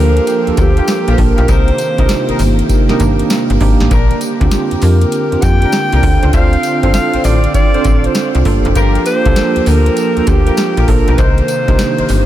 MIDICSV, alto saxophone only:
0, 0, Header, 1, 2, 480
1, 0, Start_track
1, 0, Tempo, 606061
1, 1175, Time_signature, 4, 2, 24, 8
1, 9708, End_track
2, 0, Start_track
2, 0, Title_t, "Alto saxophone"
2, 0, Program_c, 0, 65
2, 0, Note_on_c, 0, 70, 112
2, 462, Note_on_c, 0, 67, 104
2, 473, Note_off_c, 0, 70, 0
2, 906, Note_on_c, 0, 72, 69
2, 918, Note_off_c, 0, 67, 0
2, 945, Note_on_c, 0, 70, 91
2, 956, Note_off_c, 0, 72, 0
2, 1186, Note_on_c, 0, 72, 110
2, 1197, Note_off_c, 0, 70, 0
2, 2141, Note_off_c, 0, 72, 0
2, 3822, Note_on_c, 0, 70, 95
2, 4301, Note_on_c, 0, 79, 120
2, 4312, Note_off_c, 0, 70, 0
2, 5015, Note_off_c, 0, 79, 0
2, 5020, Note_on_c, 0, 77, 113
2, 5466, Note_off_c, 0, 77, 0
2, 5499, Note_on_c, 0, 77, 108
2, 5739, Note_on_c, 0, 74, 93
2, 5750, Note_off_c, 0, 77, 0
2, 5973, Note_off_c, 0, 74, 0
2, 5978, Note_on_c, 0, 74, 106
2, 6378, Note_on_c, 0, 72, 85
2, 6390, Note_off_c, 0, 74, 0
2, 6699, Note_off_c, 0, 72, 0
2, 7181, Note_on_c, 0, 72, 127
2, 7665, Note_on_c, 0, 70, 114
2, 7677, Note_off_c, 0, 72, 0
2, 8143, Note_on_c, 0, 67, 105
2, 8155, Note_off_c, 0, 70, 0
2, 8626, Note_on_c, 0, 70, 89
2, 8638, Note_off_c, 0, 67, 0
2, 8826, Note_on_c, 0, 71, 73
2, 8838, Note_off_c, 0, 70, 0
2, 8865, Note_on_c, 0, 72, 110
2, 8877, Note_off_c, 0, 71, 0
2, 9708, Note_off_c, 0, 72, 0
2, 9708, End_track
0, 0, End_of_file